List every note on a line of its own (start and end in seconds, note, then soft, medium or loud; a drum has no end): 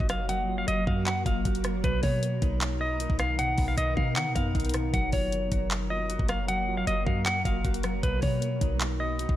0.00 0.65 F#1 loud
0.00 1.81 F#3 medium
0.00 1.81 A#3 medium
0.00 1.26 B3 medium
0.00 1.06 D#4 medium
0.00 0.48 F4 medium
0.00 0.86 F#4 loud
0.00 7.99 A#4 medium
0.00 impact medium
0.09 0.28 F#3 medium
0.09 0.25 F5 medium
0.09 cross-stick loud
0.09 closed hi-hat medium
0.29 1.63 F#3 loud
0.29 0.56 F#5 loud
0.29 closed hi-hat medium
0.48 1.25 F4 medium
0.58 0.66 F5 medium
0.68 0.86 F#1 loud
0.68 0.84 D#5 loud
0.68 closed hi-hat medium
0.87 1.24 F#2 loud
0.87 1.45 F#4 medium
0.87 1.03 F5 medium
0.87 kick loud
1.06 1.22 F#5 medium
1.06 clap loud
1.06 closed hi-hat medium
1.25 1.44 F#1 loud
1.25 3.78 F4 medium
1.25 1.80 F5 medium
1.25 kick loud
1.25 closed hi-hat medium
1.45 1.82 F#1 loud
1.45 3.89 F#4 loud
1.45 kick loud
1.45 closed hi-hat medium
1.55 closed hi-hat medium
1.64 1.89 F#3 medium
1.64 cross-stick loud
1.64 closed hi-hat medium
1.84 2.03 B1 loud
1.84 3.18 B2 loud
1.84 4.91 D#3 medium
1.84 4.91 B3 medium
1.84 2.00 B4 medium
1.84 kick loud
1.84 closed hi-hat medium
2.03 2.40 B2 loud
2.03 2.80 B3 medium
2.03 2.58 C#5 medium
2.03 kick loud
2.03 open hi-hat medium
2.23 closed hi-hat medium
2.42 3.07 B1 loud
2.42 3.00 D#4 loud
2.42 kick loud
2.42 closed hi-hat medium
2.61 clap loud
2.61 closed hi-hat medium
2.81 3.58 B3 medium
2.81 3.17 D#5 medium
3.00 3.96 D#4 loud
3.00 closed hi-hat medium
3.10 3.56 B1 loud
3.10 kick loud
3.19 3.38 B2 medium
3.19 3.35 F5 medium
3.19 cross-stick loud
3.19 closed hi-hat medium
3.39 4.73 B2 loud
3.39 3.66 F#5 loud
3.39 closed hi-hat medium
3.58 3.77 B1 loud
3.58 4.34 B3 medium
3.58 kick loud
3.58 open hi-hat medium
3.68 3.76 F5 medium
3.77 3.96 B1 loud
3.77 3.93 D#5 loud
3.77 closed hi-hat medium
3.97 4.18 B2 loud
3.97 4.54 D#4 medium
3.97 4.13 F5 medium
3.97 kick loud
4.16 4.27 D#3 loud
4.16 4.32 F#5 medium
4.16 clap loud
4.16 closed hi-hat medium
4.26 4.35 B2 loud
4.35 4.54 F#2 loud
4.35 7.45 B3 medium
4.35 4.90 F5 medium
4.35 kick loud
4.35 closed hi-hat medium
4.55 4.92 B1 loud
4.55 7.25 D#4 loud
4.55 kick loud
4.55 closed hi-hat soft
4.60 closed hi-hat medium
4.65 closed hi-hat medium
4.69 closed hi-hat medium
4.74 4.99 B2 medium
4.74 cross-stick loud
4.74 closed hi-hat medium
4.93 5.12 F#1 loud
4.93 6.27 F#3 loud
4.93 8.00 F#3 medium
4.93 8.00 A#3 medium
4.93 5.09 F#5 medium
4.93 kick loud
4.93 closed hi-hat medium
5.12 5.50 F#1 loud
5.12 5.90 F4 medium
5.12 5.68 C#5 medium
5.12 kick loud
5.12 open hi-hat medium
5.32 closed hi-hat medium
5.52 6.17 F#1 loud
5.52 6.09 F#4 medium
5.52 kick loud
5.52 closed hi-hat medium
5.71 clap loud
5.71 closed hi-hat medium
5.90 6.67 F4 medium
5.90 6.27 D#5 medium
6.09 7.06 F#4 medium
6.09 closed hi-hat medium
6.19 6.84 F#1 loud
6.19 kick loud
6.28 6.47 F#3 medium
6.28 6.45 F5 medium
6.28 cross-stick loud
6.28 closed hi-hat medium
6.48 7.83 F#3 loud
6.48 6.76 F#5 loud
6.48 closed hi-hat medium
6.68 7.44 F4 medium
6.77 6.85 F5 medium
6.87 7.06 F#1 loud
6.87 7.03 D#5 loud
6.87 closed hi-hat medium
7.06 7.44 F#2 loud
7.06 7.64 F#4 medium
7.06 7.22 F5 medium
7.06 kick loud
7.26 7.42 F#5 medium
7.26 clap loud
7.26 closed hi-hat medium
7.45 7.64 F#1 loud
7.45 9.36 F4 medium
7.45 8.00 F5 medium
7.45 kick loud
7.45 closed hi-hat medium
7.65 8.02 F#1 loud
7.65 9.36 F#4 loud
7.65 kick loud
7.65 closed hi-hat medium
7.74 closed hi-hat medium
7.83 8.08 F#3 medium
7.83 cross-stick loud
7.83 closed hi-hat medium
8.03 8.22 B1 loud
8.03 9.36 B2 loud
8.03 9.36 D#3 medium
8.03 9.36 B3 medium
8.03 9.36 F#4 medium
8.03 8.19 B4 medium
8.03 kick loud
8.03 closed hi-hat medium
8.22 8.60 B2 loud
8.22 8.99 B3 medium
8.22 8.77 C#5 medium
8.22 kick loud
8.22 open hi-hat medium
8.42 closed hi-hat medium
8.61 9.26 B1 loud
8.61 9.19 D#4 loud
8.61 kick loud
8.61 closed hi-hat medium
8.81 clap loud
8.81 closed hi-hat medium
9.00 9.36 B3 medium
9.00 9.36 D#5 medium
9.19 9.36 D#4 loud
9.19 closed hi-hat medium
9.29 9.36 B1 loud
9.29 kick loud